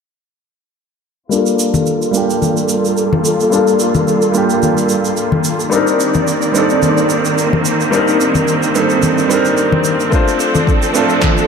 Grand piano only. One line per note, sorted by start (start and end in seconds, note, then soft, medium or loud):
1.29 2.10 G3 medium
1.29 2.11 A#3 medium
1.29 2.11 D4 medium
1.33 2.12 F4 medium
1.33 2.13 A4 medium
2.11 3.47 G3 medium
2.11 3.48 A#3 medium
2.11 3.49 D4 medium
2.16 3.50 F4 medium
2.16 3.50 G4 medium
3.50 4.30 G3 medium
3.50 4.31 A#3 medium
3.50 4.32 D4 medium
3.50 4.32 F4 medium
3.55 4.33 A4 medium
4.32 5.68 G3 medium
4.32 5.69 A#3 medium
4.32 5.69 D4 medium
4.36 5.70 F4 medium
4.36 5.71 G4 medium
5.70 6.50 G3 medium
5.70 6.51 C4 medium
5.70 6.52 D4 medium
5.74 6.53 D#4 medium
5.74 6.53 A#4 medium
6.52 7.88 G3 medium
6.52 7.89 C4 medium
6.52 7.90 D4 medium
6.57 7.90 D#4 medium
6.57 7.91 A4 medium
7.90 8.71 G3 medium
7.90 8.72 C4 medium
7.90 8.72 D4 medium
7.95 8.73 D#4 medium
7.95 8.74 A#4 medium
8.75 9.26 G3 medium
8.75 9.27 C4 medium
8.75 9.28 D4 medium
8.75 9.28 D#4 medium
8.75 9.28 A4 medium
9.28 10.09 G3 medium
9.28 10.09 C4 medium
9.28 10.10 D4 medium
9.32 10.11 D#4 medium
9.32 10.11 A#4 medium
10.10 10.91 A3 medium
10.10 10.91 C4 medium
10.10 10.92 D4 medium
10.14 10.93 F4 medium
10.14 10.94 C5 medium
10.93 11.47 A3 medium
10.93 11.47 C4 medium
10.93 11.47 D4 medium
10.97 11.47 F4 medium
10.97 11.47 A4 medium